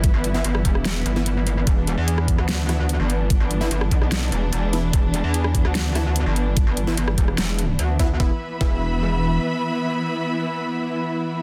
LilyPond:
<<
  \new Staff \with { instrumentName = "String section" } { \time 4/4 \key e \minor \tempo 4 = 147 << { e'1 | d'1~ | d'1~ | d'1~ |
d'1 | <e b b' e'' b''>1~ | <e b b' e'' b''>1 | } \\ { <e b>1~ | <e b>1~ | <e b>1~ | <e b>1~ |
<e b>1 | r1 | r1 | } >> }
  \new Staff \with { instrumentName = "Supersaw synth" } { \time 4/4 \key e \minor r8. <e b e'>16 r4. r16 <e b e'>16 r4 | r2 r8 <e b e'>16 r4 r16 | r8. <e b e'>16 r2 r8 <e b e'>16 r16 | r2 r8 <e b e'>16 r4 r16 |
r8. <e b e'>16 r2 r8 <e b e'>16 r16 | <e b e'>16 r8. <e b e'>2.~ | <e b e'>1 | }
  \new Staff \with { instrumentName = "Wobble bass" } { \clef bass \time 4/4 \key e \minor g,,16 g,,8. g,,8 e,,4 g,,4. | e,,8. e,4 d,4. g,,8.~ | g,,16 g,,8. g,,8 b,,4 e,,8 e,,4 | e,,8. e,4 d,4. g,,8.~ |
g,,16 g,,8. g,,8 e,,8 e,,4 d,8 d,8 | e,,16 r8. e,,2 r4 | r1 | }
  \new DrumStaff \with { instrumentName = "Drums" } \drummode { \time 4/4 <hh bd>8 hh8 hh16 ss16 <hh bd>16 ss16 <hh sn>8 hh8 hh8 hh8 | <hh bd>8 hh8 hh16 ss16 <hh bd>16 ss16 <hh sn>8 <hh ss>8 hh8 hh8 | <hh bd>8 hh8 hh16 ss16 <hh bd>16 ss16 <hh sn>8 hh8 hh8 hh8 | <hh bd>8 hh8 hh16 ss16 <hh bd>16 ss16 <hh sn>8 <hh ss>8 hh8 hh8 |
<hh bd>8 hh8 hh16 ss16 <hh bd>16 ss16 <hh sn>8 hh8 hh8 <hh bd>8 | bd4 bd4 r4 r4 | r4 r4 r4 r4 | }
>>